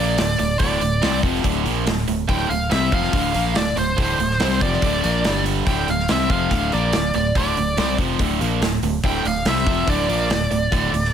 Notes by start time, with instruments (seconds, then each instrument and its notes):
Already playing: fingered electric bass A#1, overdriven electric guitar A#2 F3, lead electric guitar D5
0.00 overdriven electric guitar A#3
0.18 fingered electric bass D1, overdriven electric guitar D2 A2, snare, open hi-hat
0.39 fingered electric bass D1, overdriven electric guitar D2 A2, lead electric guitar D5, open hi-hat
0.59 fingered electric bass D1, overdriven electric guitar D2 A2 D3, lead electric guitar D5, kick, open hi-hat
0.81 fingered electric bass D1, overdriven electric guitar D2 A2, open hi-hat
1.02 fingered electric bass C2, overdriven electric guitar C3 G3 C4, snare, open hi-hat
1.23 fingered electric bass F1, overdriven electric guitar F2 C3 F3, kick, open hi-hat
1.35 snare
1.44 fingered electric bass D1, overdriven electric guitar D2 A2 D3, kick, open hi-hat
1.65 fingered electric bass A#1, overdriven electric guitar A#2 F3 A#3, open hi-hat
1.87 fingered electric bass D1, overdriven electric guitar D2 A2, snare, open hi-hat
2.08 fingered electric bass D1, overdriven electric guitar D2 A2, open hi-hat
2.29 fingered electric bass D1, overdriven electric guitar D2 A2 D3, lead electric guitar G5, kick, open hi-hat
2.50 fingered electric bass D1, overdriven electric guitar D2 A2, lead electric guitar F5, open hi-hat
2.71 fingered electric bass C2, overdriven electric guitar C3 G3 C4, lead electric guitar E5, snare, open hi-hat
2.92 fingered electric bass F1, overdriven electric guitar F2 C3 F3, lead electric guitar F5, kick, open hi-hat
3.03 snare
3.13 fingered electric bass D1, overdriven electric guitar D2 A2 D3, kick, open hi-hat
3.34 fingered electric bass A#1, overdriven electric guitar A#2 F3 A#3, open hi-hat
3.55 fingered electric bass D1, overdriven electric guitar D2 A2, lead electric guitar D5, snare, open hi-hat
3.77 fingered electric bass D1, overdriven electric guitar D2 A2, lead electric guitar C5, open hi-hat
3.98 fingered electric bass D1, overdriven electric guitar D2 A2 D3, kick, open hi-hat
4.19 fingered electric bass D1, overdriven electric guitar D2 A2, open hi-hat
4.31 snare
4.40 fingered electric bass C2, overdriven electric guitar C3 G3 C4, snare, open hi-hat
4.61 fingered electric bass F1, overdriven electric guitar F2 C3 F3, lead electric guitar D5, kick, open hi-hat
4.73 snare
4.82 fingered electric bass D1, overdriven electric guitar D2 A2 D3, kick, open hi-hat
5.03 fingered electric bass A#1, overdriven electric guitar A#2 F3 A#3, open hi-hat
5.24 fingered electric bass G1, overdriven electric guitar G2 D3 G3, snare, open hi-hat
5.46 open hi-hat
5.67 fingered electric bass D1, overdriven electric guitar D2 A2 D3, lead electric guitar G5, kick, open hi-hat
5.88 fingered electric bass D1, overdriven electric guitar D2 A2, lead electric guitar F5, open hi-hat
5.99 snare
6.08 fingered electric bass C2, overdriven electric guitar C3 G3 C4, lead electric guitar E5, snare, open hi-hat
6.30 fingered electric bass F1, overdriven electric guitar F2 C3 F3, lead electric guitar F5, kick, open hi-hat
6.51 fingered electric bass D1, overdriven electric guitar D2 A2 D3, kick, open hi-hat
6.72 fingered electric bass A#1, overdriven electric guitar A#2 F3 A#3, lead electric guitar D5, open hi-hat
6.93 fingered electric bass D1, overdriven electric guitar D2 A2, snare, open hi-hat
7.14 fingered electric bass D1, overdriven electric guitar D2 A2, lead electric guitar D5, open hi-hat
7.35 fingered electric bass D1, overdriven electric guitar D2 A2 D3, lead electric guitar D5, kick, open hi-hat
7.57 fingered electric bass D1, overdriven electric guitar D2 A2, open hi-hat
7.77 fingered electric bass C2, overdriven electric guitar C3 G3 C4, snare, open hi-hat
7.98 fingered electric bass F1, overdriven electric guitar F2 C3 F3, kick, open hi-hat
8.19 fingered electric bass D1, overdriven electric guitar D2 A2 D3, kick, open hi-hat
8.41 fingered electric bass A#1, overdriven electric guitar A#2 F3 A#3, open hi-hat
8.62 fingered electric bass D1, overdriven electric guitar D2 A2, snare, open hi-hat
8.82 fingered electric bass D1, overdriven electric guitar D2 A2, open hi-hat
9.04 fingered electric bass D1, overdriven electric guitar D2 A2 D3, lead electric guitar G5, kick, open hi-hat
9.25 fingered electric bass D1, overdriven electric guitar D2 A2, lead electric guitar F5, open hi-hat
9.45 fingered electric bass C2, overdriven electric guitar C3 G3 C4, lead electric guitar E5, snare, open hi-hat
9.67 fingered electric bass F1, overdriven electric guitar F2 C3 F3, kick, open hi-hat
9.87 fingered electric bass D1, overdriven electric guitar D2 A2 D3, lead electric guitar D5, kick, open hi-hat
10.08 fingered electric bass A#1, overdriven electric guitar A#2 F3 A#3, open hi-hat
10.30 fingered electric bass D1, overdriven electric guitar D2 A2, snare, open hi-hat
10.51 fingered electric bass D1, overdriven electric guitar D2 A2, open hi-hat
10.71 fingered electric bass D1, overdriven electric guitar D2 A2 D3, kick, open hi-hat
10.92 fingered electric bass D1, overdriven electric guitar D2 A2, open hi-hat
11.05 snare